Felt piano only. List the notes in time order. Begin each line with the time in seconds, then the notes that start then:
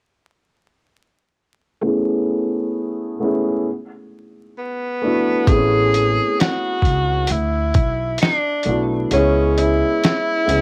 1.81 A3 B3 C#4 E4
1.86 G#4
3.19 A3 B3 C#4 E4
3.24 G#4
5.01 A3 B3 D4 E4
5.06 F#4
5.47 A3 B3 C4 E4
5.51 G#4
5.56 C#4
8.65 A3 B3 D4 E4
8.69 F#4
9.11 G#3 B3 C#4 E4
9.16 G#4
10.45 G#3 B3 C#4 E4
10.50 G#4